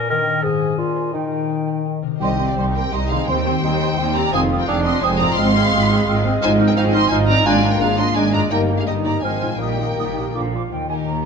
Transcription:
Already playing: A#2 D4 B4
0.09 D#3 A#4 G5
0.27 G4 A#4
0.43 G#2 G#4 G#5
0.61 G#4 C5
0.78 A#2 F4
0.96 G#4 C5
1.13 D#3 D#4 G5
1.32 A#4
1.49 D#4
1.67 A#4
1.85 D#4
2.02 C3 A#4
2.07 D#4
2.11 G4
2.16 D#3 C5
2.20 C2 G3 C4 D#4 G4 D#5 C6
2.39 G3 C4 G4 C6
2.48 F4 D5
2.57 C2 G3 D#4 C5 C6
2.75 G3 C4 G4 A#4 G5 C6
2.93 C2 G3 D#4 G4 D#5 C6
3.10 D#3 G3 C4 G4 G#4 F5 C6
3.16 D#4
3.20 G4
3.25 D#2 D#3 C5 G5
3.29 D#3 G3 C4 D#4 C6
3.47 C4 G4 C6
3.63 D#2 G3 C4 D#4 C6
3.81 C4 G4 C6
3.97 D#2 G3 C4 D#4 G4 C6
4.14 F3 C4 G4 D5 A#5 C6
4.20 D#4
4.24 F4
4.29 C5 G#5
4.33 F1 F2 D#3 G#3 C4 D#4 F4 D#6
4.51 C4 F4 D#6
4.59 A#4 G5
4.67 F1 F2 G#3 C4 D4 D#4 G#4 F5 D#6
4.84 C4 F4 D#5 C6 D#6
5.02 F1 F2 G#3 C4 D#4 C5 G#5 D#6
5.19 G#2 C4 F4 D5 A#5 D#6
5.25 C4
5.29 F4
5.33 C5 F5 C6
5.38 G#1 G#2 F3 G#3 C4 F4 F6
5.55 C4 G#4 F6
5.73 G#1 G#2 G#3 C4 F4 F6
5.89 C4 G#4 F6
6.06 G#1 G#2 G#3 C4 F4 F6
6.24 G#2 C4 G#4 F6
6.28 C4
6.33 F4
6.38 D#5
6.42 G#1 G#2 F3 D#4 F4 C5 G#5 F6
6.59 C4 D#4 F6
6.68 A#4 G5
6.76 G#1 G#2 C4 D#4 F4 G#4 F5 F6
6.92 C4 D#4 D#5 C6 F6
7.10 G#1 G#2 D#4 F4 C5 G#5 F6
7.27 G#2 C4 D#4 D5 A#5 F6
7.32 A#3
7.37 F4
7.41 G#1 D4 D5
7.45 G#2 G#3 A#3 D4 F4 D5 G#5 A#5
7.63 A#3 D4 F4 A#5
7.73 A#4 G5
7.80 G#1 G#2 G#3 D4 G#4 F5 A#5
7.98 A#3 D4 F4 D#5 A#5 C6
8.16 G#1 G#2 G#3 D4 D5 G#5 A#5
8.33 G2 A#3 D4 F4 D5 A#5
8.38 A#3
8.43 D#4
8.48 G1 G2 G3 A#3 D#4 D#5 A#5
8.52 A#4 G5
8.69 A#3 D#4 G4 A#5
8.79 G#4 F5
8.86 G1 G2 G3 A#3 D#4 G4 D#5 A#5
9.04 G#2 A#3 D#4 G4 D5 A#5
9.10 C4
9.15 F4
9.19 G#1 D#3 F3 C4 D#4 C5 D#5
9.23 G#2 G#5 F6
9.41 A#2 F3 D#4 F4 F6
9.47 A#3
9.52 D#4
9.56 A#1 A#2 G3 A#3 D#4 A#4 D#5
9.60 D#3 D#4 G5 D#6
9.78 D#3 D#4 G4 D#6
9.97 A#1 A#2 G3 D#4 D#6
10.16 A#2 D#3 D#4 G4 D#6
10.23 A#3
10.27 F4
10.31 D3 D4 D5 D6
10.35 A#1 A#2 F3 D4 F4 F5
10.53 F3 F4 D6
10.72 D#2 D#3 G5
10.88 D#4 G4 A#4 D#5 G#5
11.04 D#2 A#3 G4 A#5
11.22 D#4 G4 A#4

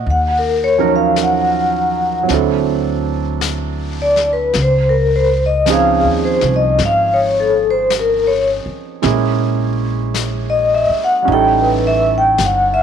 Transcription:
Already playing: F#5
0.03 D#2, brush sweep
0.11 F#5
0.39 A#4
0.64 C#5
0.78 F3 F#3 C#4 D#4 A#4
0.96 F5
1.16 brush sweep, snare, hi-hat pedal
1.23 F#5
2.23 F#3 C4
2.29 D2 D4 E4, brush sweep, snare
2.34 A4
3.41 brush sweep, snare, hi-hat pedal
4.02 D5
4.16 snare
4.33 B4
4.53 C#2, brush sweep, snare
4.62 C5
4.89 A#4
5.16 C5
5.46 D#5
5.66 F3 C4 C#4 D#4, brush sweep, snare, hi-hat pedal
5.70 G#4 F5
6.00 G#4
6.04 D#2
6.25 C5
6.41 C2, snare
6.56 D#5
6.79 G#1, brush sweep, snare
6.85 F5
7.14 C#5
7.40 A4
7.71 C5
7.90 brush sweep, snare, hi-hat pedal
7.99 A#4
8.27 C#5
8.66 muted upright bass stroke
9.02 A#1 G#3 A#3 C#4 E4 G#4, brush sweep, snare
10.14 brush sweep, snare, hi-hat pedal
10.50 D#5
10.74 E5
10.89 muted upright bass stroke
11.04 F#5
11.22 G3 C#4, brush sweep
11.28 A1 D#4 E4
11.32 A4 G5
11.61 B4
11.87 E5
12.18 G5
12.38 G1, brush sweep, snare, hi-hat pedal
12.45 F#5
12.74 E5

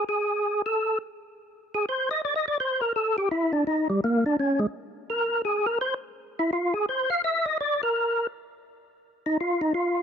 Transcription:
0.09 G#4
0.66 A4
1.75 G#4
1.89 C5
2.11 D#5
2.25 D5
2.36 D#5
2.48 D5
2.60 C5
2.81 A#4
2.96 A4
3.18 G4
3.31 E4
3.53 D4
3.67 D#4
3.90 G3
4.04 A#3
4.26 D4
4.39 C#4
4.59 G#3
5.10 A#4
5.45 G#4
5.66 A#4
5.81 C5
6.39 E4
6.53 F4
6.74 G#4
6.89 C5
7.10 F5
7.24 E5
7.46 D#5
7.61 D5
7.83 A#4
9.26 D#4
9.41 F4
9.61 D#4
9.74 F4

